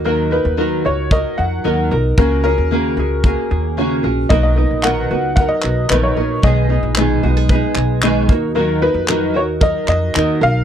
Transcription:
<<
  \new Staff \with { instrumentName = "Upright piano" } { \time 4/4 \key dis \minor \tempo 4 = 113 ais'8 b'4 cis''8 dis''8 fis''4 r8 | ais'8 ais'2 r4. | dis''16 dis''8. fis''4 fis''16 dis''8. b'16 cis''8. | dis''4 r2. |
ais'8 b'4 cis''8 dis''8 dis''4 eis''8 | }
  \new Staff \with { instrumentName = "Five-string banjo" } { \time 4/4 \key dis \minor ais8 dis'8 ais'8 fis'8 ais'8 fis'8 dis'8 ais'8 | ais8 cis'8 ais'8 gis'8 ais'8 gis'8 cis'8 ais'8 | ais8 dis'8 ais'8 fis'8 ais'8 fis'8 dis'8 ais'8 | gis8 dis'8 b'8 fis'16 gis'16 b'8 gis'8 dis'8 ais8 |
ais8 dis'8 ais'8 fis'8 ais'8 fis'8 dis'8 ais'8 | }
  \new Staff \with { instrumentName = "Nylon-string guitar" } { \time 4/4 \key dis \minor <dis fis dis' fis' ais'>8 <dis' fis' ais'>8 <dis fis dis' fis' ais'>8 <dis' fis' ais'>8 <fis dis' fis' ais'>4 <dis fis dis' fis' ais'>8 <dis' fis' ais'>8 | <cis ais cis' fis' gis'>8 <cis' fis' gis'>8 <cis ais cis' fis' gis'>8 <cis' fis' gis'>8 <ais cis' fis' gis'>4 <cis ais cis' fis' gis'>8 <cis' fis' gis'>8 | <b, dis fis b dis' ais'>8 <fis b dis' ais'>8 <b, dis fis b dis' ais'>8 <fis b dis' ais'>8 <fis b dis' ais'>4 <b, dis fis b dis' ais'>8 <fis b dis' ais'>8 | <b, dis gis b dis' gis'>8 <gis b dis' gis'>8 <b, dis gis b dis' gis'>8 <gis b dis' gis'>8 <gis b dis' gis'>4 <b, dis gis b dis' gis'>8 <dis' fis' ais'>8 |
<dis fis dis' fis' ais'>8 <dis' fis' ais'>8 <dis fis dis' fis' ais'>8 <dis' fis' ais'>8 <fis dis' fis' ais'>4 <dis fis dis' fis' ais'>8 <dis' fis' ais'>8 | }
  \new Staff \with { instrumentName = "Upright bass" } { \clef bass \time 4/4 \key dis \minor dis,8. dis,8. cis,8. r16 eis,8 dis,8 b,,8 | cis,8. dis,8. cis,8. r16 dis,4 ais,,8 | b,,8. ais,,8. cis,8. r16 b,,8 ais,,8 ais,,8 | b,,8. ais,,8. b,,8. r16 b,,4 dis,8~ |
dis,8. eis,8. dis,8. r16 eis,8 dis,8 b,,8 | }
  \new DrumStaff \with { instrumentName = "Drums" } \drummode { \time 4/4 r4 r4 bd4 r4 | bd4 r4 bd4 r4 | bd4 hc4 bd8 hc8 hc4 | bd4 hc4 bd8 hc8 hc8 bd8 |
r4 hc4 bd8 hc8 hc4 | }
>>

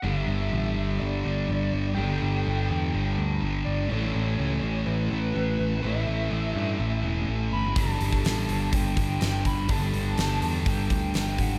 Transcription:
<<
  \new Staff \with { instrumentName = "Soft synth lead" } { \time 4/4 \key g \lydian \tempo 4 = 124 e''2 d''2 | g''2. r8 d''8 | cis''2 b'2 | e''2. r8 b''8 |
a''2 g''4. b''8 | a''2 g''4. fis''8 | }
  \new Staff \with { instrumentName = "Overdriven electric guitar" } { \time 4/4 \key g \lydian <g d' g' a'>1 | <g d' g' a'>1 | <a cis' e' a'>1 | <a cis' e' a'>1 |
<g d' g' a'>1 | <g d' g' a'>1 | }
  \new Staff \with { instrumentName = "Distorted electric guitar" } { \clef bass \time 4/4 \key g \lydian <g, d g>4 <g, d g>4 <g, d g>8 <d g>8 <g, d g>4 | <g, d g>4 <g, d g>4 <g, d g>8 <d g>8 <g, d g>4 | <a, e a>4 <a, e a>4 <a, e a>8 <e a>8 <a, e a>4 | <a, e a>4 <a, e a>4 <a, e a>8 <e a>8 <a, e a>4 |
<g, d g>4 <g, d g>4 <g, d g>8 <d g>8 <g, d g>4 | <g, d g>4 <g, d g>4 <g, d g>8 <d g>8 <g, d g>4 | }
  \new Staff \with { instrumentName = "Picked electric bass" } { \clef bass \time 4/4 \key g \lydian g,,8 g,,8 a,,8 g,,8 g,,8 g,,8 g,,8 g,,8 | g,,8 g,,8 g,,8 e,8 g,,8 d,8 g,,8 g,,8 | a,,8 a,,8 cis,8 a,,8 a,,8 a,,8 a,,8 a,,8 | a,,8 a,,8 a,,8 g,8 a,,8 e,,8 a,,8 g,,8 |
g,,8 g,,8 a,,8 g,,8 g,,8 g,,8 g,,8 g,,8 | g,,8 g,,8 g,,8 e,8 g,,8 d,8 g,,8 gis,,8 | }
  \new DrumStaff \with { instrumentName = "Drums" } \drummode { \time 4/4 r4 r4 r4 r4 | r4 r4 r4 r4 | r4 r4 r4 r4 | r4 r4 r4 r4 |
<hho bd>8 hho16 bd16 <hho sn>8 hho8 <hho bd>8 <hho bd>8 <hho sn>8 <hho bd>8 | <hho bd>8 hho8 <hho sn>8 hho8 <hho bd>8 <hho bd>8 <hho sn>8 <hho bd>8 | }
>>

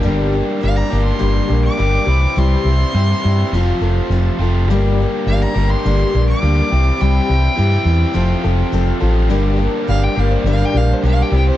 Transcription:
<<
  \new Staff \with { instrumentName = "Fiddle" } { \time 4/4 \key g \dorian \tempo 4 = 104 r4 f''16 bes''8 c'''4 d'''4~ d'''16 | c'''2. r4 | r4 f''16 bes''8 c'''4 d'''4~ d'''16 | g''2. r4 |
r4 f''16 g''16 f''16 c''16 f''16 g''16 f''16 c''16 f''16 g''16 g''16 c''16 | }
  \new Staff \with { instrumentName = "Steel-string acoustic guitar" } { \time 4/4 \key g \dorian <g, d g bes d' g'>8 <g bes d' g'>8 <g bes d' g'>8 <g bes d' g'>8 <g, d g bes d' g'>8 <g bes d' g'>8 <g bes d' g'>8 <c' e' g'>8 | <c g c' e' g'>8 <c' e' g'>8 <g c' e' g'>8 <c' e' g'>8 <f c' f' a'>8 <c' f' a'>8 <f c' f' a'>8 <c' f' a'>8 | <g, d g bes d' g'>8 <g bes d' g'>8 <g bes d' g'>8 <g bes d' g'>8 <g, d g bes d' g'>8 <g bes d' g'>8 <g bes d' g'>8 <c' e' g'>8 | <c g c' e' g'>8 <c' e' g'>8 <g c' e' g'>8 <c' e' g'>8 <f c' f' a'>8 <c' f' a'>8 <f c' f' a'>8 <c' f' a'>8 |
<g, d g bes d' g'>8 <g bes d' g'>8 <g bes d' g'>8 <g bes d' g'>8 <g, d g bes d' g'>8 <g bes d' g'>8 <g bes d' g'>8 <c' e' g'>8 | }
  \new Staff \with { instrumentName = "Overdriven electric guitar" } { \clef bass \time 4/4 \key g \dorian <g, d g bes d' g'>4. <g, d g bes d' g'>4. <g, d g bes d' g'>8 <c e g c' e'>8~ | <c e g c' e'>4 <c e g c' e'>4 <f, c f a c' f'>4. <f, c f a c' f'>8 | <g, d g bes d' g'>4. <g, d g bes d' g'>4. <g, d g bes d' g'>8 <c e g c' e'>8~ | <c e g c' e'>4 <c e g c' e'>4 <f, c f a c' f'>4. <f, c f a c' f'>8 |
<g, d g bes d' g'>4. <g, d g bes d' g'>4. <g, d g bes d' g'>8 <c e g c' g'>8 | }
  \new Staff \with { instrumentName = "Fingered electric bass" } { \clef bass \time 4/4 \key g \dorian g,,4 g,,8 g,,8 g,,8 bes,,8 g,,8 c,8 | c,8 c,8 g,8 g,8 f,,8 f,,8 f,,8 f,,8 | g,,4 g,,8 g,,8 g,,8 bes,,8 d,8 c,8 | c,8 c,8 g,8 e,8 f,,8 f,,8 f,,8 a,,8 |
g,,4 g,,8 g,,8 g,,8 bes,,8 b,,8 c,8 | }
>>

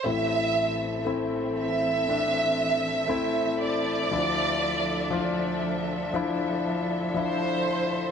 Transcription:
<<
  \new Staff \with { instrumentName = "Violin section" } { \time 4/4 \key a \phrygian \tempo 4 = 59 e''4 r8 e''2 d''8~ | d''4. r4. c''4 | }
  \new Staff \with { instrumentName = "String section" } { \time 4/4 \key a \phrygian << { <a' e''>1~ | <a' e''>1 | } \\ { <e c'>1 | <f d'>1 | } >> }
  \new Staff \with { instrumentName = "Grand piano" } { \time 4/4 \key a \phrygian <a c' e'>4 <a c' e'>4 <a c' d'>4 <a c' e'>4 | <f d' e'>4 <f d' f'>4 <f d' e'>4 <f d' e'>4 | }
  \new Staff \with { instrumentName = "Grand piano" } { \clef bass \time 4/4 \key a \phrygian <a,, a,>1 | <d, d>1 | }
>>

